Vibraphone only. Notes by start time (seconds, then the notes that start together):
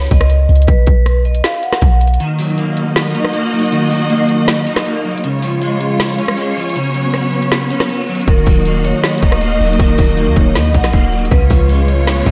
0.12 D#5
0.68 B4
1.25 D#5
1.44 F5
1.63 F#5
8.28 A#4
8.85 C#5
9.22 D#5
9.80 A#4
10.37 C#5
10.56 D#5
10.74 F#5
11.31 B4
11.88 C#5
12.27 D#5